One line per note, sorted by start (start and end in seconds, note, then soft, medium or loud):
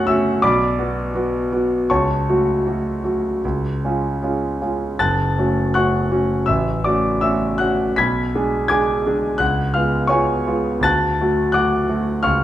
0.00 0.44 F#2 medium
0.00 0.09 A3 medium
0.00 0.09 C#4 medium
0.00 0.09 F#4 medium
0.00 0.44 F#5 medium
0.00 0.44 A5 medium
0.00 0.45 C#6 medium
0.00 0.45 F#6 medium
0.00 0.44 A6 loud
0.07 0.39 A3 soft
0.07 0.39 C#4 soft
0.07 0.40 F#4 medium
0.07 0.40 E5 medium
0.07 0.42 E6 medium
0.42 0.77 B1 medium
0.42 1.85 D5 medium
0.42 1.84 B5 medium
0.42 1.88 D6 medium
0.78 1.10 F#3 soft
0.78 1.11 B3 soft
0.78 1.11 F#4 soft
1.14 1.47 F#3 soft
1.14 1.47 B3 soft
1.14 1.47 F#4 soft
1.52 1.85 F#3 soft
1.52 1.85 B3 soft
1.52 1.85 F#4 soft
1.90 2.27 C#2 medium
1.90 4.58 C#5 soft
1.90 4.58 A5 medium
1.90 4.61 C#6 medium
2.29 2.62 F#3 soft
2.29 2.63 A3 soft
2.29 2.63 F#4 soft
2.66 3.00 F#3 soft
2.66 3.00 A3 soft
2.66 3.01 F#4 soft
3.04 3.39 F#3 soft
3.04 3.39 A3 soft
3.04 3.39 F#4 soft
3.45 3.82 C#2 soft
3.85 4.19 G#3 soft
3.85 4.19 C#4 soft
3.85 4.20 F4 soft
4.22 4.57 G#3 soft
4.22 4.58 C#4 soft
4.22 4.58 F4 soft
4.62 4.96 G#3 soft
4.62 4.95 C#4 soft
4.62 4.96 F4 soft
4.99 5.36 F#1 medium
4.99 5.72 A5 medium
4.99 5.71 F#6 medium
4.99 5.75 A6 medium
5.38 5.72 A3 soft
5.38 5.72 C#4 soft
5.38 5.72 F#4 soft
5.74 6.08 A3 soft
5.74 6.09 C#4 soft
5.74 6.09 F#4 soft
5.74 6.44 F#5 medium
5.74 6.44 C#6 medium
5.74 6.47 F#6 medium
6.11 6.44 A3 soft
6.11 6.44 C#4 soft
6.11 6.44 F#4 soft
6.46 6.84 A1 medium
6.46 6.82 E5 medium
6.46 6.84 E6 medium
6.84 7.18 A3 soft
6.84 7.19 C#4 soft
6.84 7.19 F#4 soft
6.84 7.19 D5 soft
6.84 7.21 D6 medium
7.21 7.56 A3 soft
7.21 7.57 C#4 soft
7.21 7.57 F#4 soft
7.21 7.57 E5 medium
7.21 7.60 E6 medium
7.58 7.95 A3 soft
7.58 7.95 C#4 soft
7.58 7.95 F#4 soft
7.58 7.96 F#5 medium
7.58 7.98 F#6 medium
7.96 8.34 B1 medium
7.96 8.67 B5 medium
7.96 8.66 G#6 medium
7.96 8.69 B6 medium
8.35 8.67 G#3 soft
8.35 8.67 D4 soft
8.35 8.67 G#4 soft
8.68 9.02 G#3 soft
8.68 9.02 D4 soft
8.68 9.02 G#4 soft
8.68 9.36 G#5 medium
8.68 9.36 D6 medium
8.68 9.39 G#6 medium
9.06 9.37 G#3 soft
9.06 9.37 D4 soft
9.06 9.38 G#4 soft
9.38 9.74 C#2 medium
9.38 9.73 F#5 medium
9.38 9.74 F#6 medium
9.74 10.07 G#3 soft
9.74 10.07 B3 soft
9.74 10.07 F4 soft
9.74 10.07 F5 medium
9.74 10.09 F6 medium
10.07 10.43 G#3 soft
10.07 10.43 B3 soft
10.07 10.43 F4 soft
10.07 10.80 C#5 medium
10.07 10.80 G#5 medium
10.07 10.83 C#6 medium
10.47 10.81 G#3 soft
10.47 10.81 B3 soft
10.47 10.81 F4 soft
10.81 11.17 D2 medium
10.81 11.50 A5 medium
10.81 11.50 F#6 medium
10.81 11.53 A6 medium
11.21 11.51 F#3 soft
11.21 11.51 A3 soft
11.21 11.51 F#4 soft
11.52 11.85 F#3 soft
11.52 11.85 A3 soft
11.52 11.86 F#4 soft
11.52 12.21 F#5 medium
11.52 12.20 D6 medium
11.52 12.24 F#6 medium
11.89 12.21 F#3 soft
11.89 12.21 A3 soft
11.89 12.21 F#4 soft
12.23 12.44 C#2 medium
12.23 12.44 F5 medium
12.23 12.44 C#6 medium
12.23 12.44 F6 medium